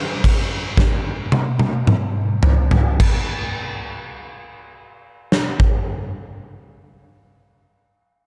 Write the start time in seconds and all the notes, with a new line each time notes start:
0.24 kick, crash
0.77 kick, snare
1.32 high tom
1.59 high tom
1.87 mid tom
2.43 floor tom
2.71 floor tom
3.00 kick, crash
5.32 snare
5.60 kick